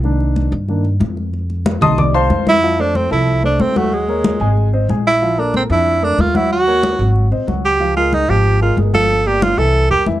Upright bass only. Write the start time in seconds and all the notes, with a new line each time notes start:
Already playing: C2
0.52 G2
1.00 F2
1.81 C2
2.30 F2
3.11 C2
3.59 D#2
4.40 G#1
4.89 A#1
5.70 F2
6.18 D#2
6.99 G#1
7.31 A#1
7.47 C#2
8.28 G#1
8.77 G1
9.58 C2
9.90 E2
10.06 F2